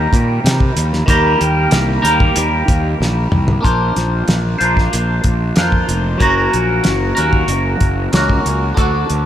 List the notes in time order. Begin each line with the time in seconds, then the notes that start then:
Already playing: D#3 G3 A#3 G4 A#4
0.13 A#2, kick, closed hi-hat
0.44 C3, snare, closed hi-hat
0.60 kick
0.77 D#2, closed hi-hat
0.93 snare
1.06 D#2 D#3 G3 A#3 G4, kick, closed hi-hat
1.10 A#4
1.41 D#2, closed hi-hat
1.71 C2, snare, closed hi-hat
2.02 D#2 D#3 G3 A#3 G4 A#4, closed hi-hat
2.20 kick
2.36 D#2, closed hi-hat
2.68 D#2, kick, closed hi-hat
3.00 A#1, snare
3.32 C2, mid tom
3.48 floor tom
3.61 A#1 A#3 D4 F4, kick
3.65 C5, closed hi-hat
3.96 A#1, snare, closed hi-hat
4.28 A#1, snare, closed hi-hat
4.58 A#1 D4 F4 C5, closed hi-hat
4.63 A#3
4.77 kick, snare
4.93 A#1, closed hi-hat
5.24 A#1, kick, closed hi-hat
5.56 F2 A#3 D4 F4 C5, snare, closed hi-hat
5.72 kick
5.88 F1, closed hi-hat
6.18 F#1 F#3 A#3 C#4 F#4, kick, closed hi-hat
6.22 A#4
6.53 A#1, closed hi-hat
6.84 F#1, snare, closed hi-hat
7.15 D#2 A#3 C#4 F#4 A#4, closed hi-hat
7.19 F#3
7.33 kick
7.48 F#1, closed hi-hat
7.81 F#1, kick, closed hi-hat
8.12 C#2 F#3 A#3 C#4 F#4, snare, closed hi-hat
8.17 A#4
8.30 kick
8.46 C#2, closed hi-hat
8.74 D2 D3 D4 F#4 A4, kick, closed hi-hat
9.10 D2, closed hi-hat